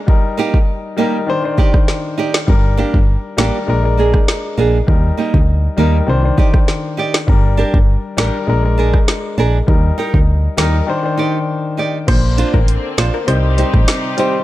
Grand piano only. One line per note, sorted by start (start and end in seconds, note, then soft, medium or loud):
0.00 0.10 G#3 medium
0.07 0.62 G3 medium
0.07 0.63 D#4 medium
0.07 0.63 A#4 medium
0.97 1.25 G3 medium
0.97 1.25 D#4 medium
0.97 1.26 A#4 medium
1.27 1.40 D#3 medium
1.27 1.41 D4 medium
1.27 1.42 C5 loud
1.42 2.06 D#3 medium
1.42 2.07 D4 medium
1.42 2.08 C5 medium
2.47 3.02 G3 medium
2.47 3.03 D4 medium
2.47 3.03 A#4 medium
3.37 3.65 G3 medium
3.37 3.65 D4 medium
3.37 3.66 A#4 medium
3.67 3.80 G#3 medium
3.67 3.81 D4 medium
3.67 3.82 A#4 loud
3.82 4.46 G#3 medium
3.82 4.47 D4 medium
3.82 4.48 A#4 medium
4.87 5.42 G3 medium
4.87 5.43 D#4 medium
4.87 5.43 A#4 medium
5.77 6.05 G3 medium
5.77 6.05 D#4 medium
5.77 6.06 A#4 medium
6.07 6.20 D#3 medium
6.07 6.21 D4 medium
6.07 6.22 C5 loud
6.23 6.86 D#3 medium
6.23 6.87 D4 medium
6.23 6.88 C5 medium
7.27 7.82 G3 medium
7.27 7.83 D4 medium
7.27 7.83 A#4 medium
8.17 8.45 G3 medium
8.17 8.45 D4 medium
8.17 8.46 A#4 medium
8.47 8.60 G#3 medium
8.47 8.61 D4 medium
8.47 8.62 A#4 loud
8.63 9.26 G#3 medium
8.63 9.27 D4 medium
8.63 9.28 A#4 medium
9.67 10.22 G3 medium
9.67 10.23 D#4 medium
9.67 10.23 A#4 medium
10.57 10.85 G3 medium
10.57 10.85 D#4 medium
10.57 10.86 A#4 medium
10.87 11.00 D#3 medium
10.87 11.01 D4 medium
10.87 11.02 C5 loud
11.03 11.66 D#3 medium
11.03 11.67 D4 medium
11.03 11.68 C5 medium
12.07 12.80 A#3 medium
12.07 12.81 D4 medium
12.07 12.82 C5 medium
13.27 13.52 G3 medium
13.27 13.52 D#4 medium
13.27 13.53 C5 medium
13.57 13.94 G3 medium
13.57 13.95 D#4 medium
13.57 13.95 C5 medium
14.17 14.36 G3 medium
14.17 14.37 D#4 medium
14.17 14.38 C5 loud